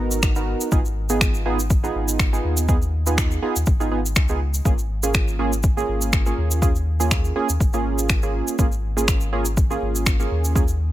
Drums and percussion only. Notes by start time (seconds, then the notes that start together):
0.11 cabasa
0.23 finger snap, kick, cabasa
0.36 cabasa
0.61 cabasa
0.72 kick, cabasa
0.85 cabasa
1.09 cabasa
1.21 finger snap, kick, cabasa
1.34 cabasa
1.59 cabasa
1.70 kick, cabasa
1.84 cabasa
2.08 cabasa
2.19 finger snap, kick, cabasa
2.34 cabasa
2.57 cabasa
2.69 kick, cabasa
2.82 cabasa
3.07 cabasa
3.18 finger snap, kick, cabasa
3.31 cabasa
3.56 cabasa
3.66 kick, cabasa
3.81 cabasa
4.06 cabasa
4.16 finger snap, kick, cabasa
4.28 cabasa
4.54 cabasa
4.65 kick, cabasa
4.78 cabasa
5.03 cabasa
5.14 finger snap, kick, cabasa
5.28 cabasa
5.53 cabasa
5.63 kick, cabasa
5.78 cabasa
6.01 cabasa
6.13 finger snap, kick, cabasa
6.26 cabasa
6.51 cabasa
6.62 kick, cabasa
6.75 cabasa
7.00 cabasa
7.11 finger snap, kick, cabasa
7.25 cabasa
7.49 cabasa
7.60 kick, cabasa
7.73 cabasa
7.98 cabasa
8.09 finger snap, kick, cabasa
8.23 cabasa
8.48 cabasa
8.59 kick, cabasa
8.72 cabasa
8.98 cabasa
9.08 finger snap, kick, cabasa
9.21 cabasa
9.45 cabasa
9.57 kick, cabasa
9.71 cabasa
9.95 cabasa
10.06 finger snap, kick, cabasa
10.20 cabasa
10.44 cabasa
10.56 kick, cabasa
10.68 cabasa